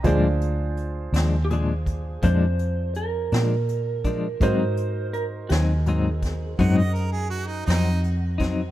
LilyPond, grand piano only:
\new Staff \with { instrumentName = "Grand piano" } { \time 12/8 \key bes \dorian \tempo 4. = 55 <d' f' aes' c''>1. | <ees' ges' bes' c''>1. | }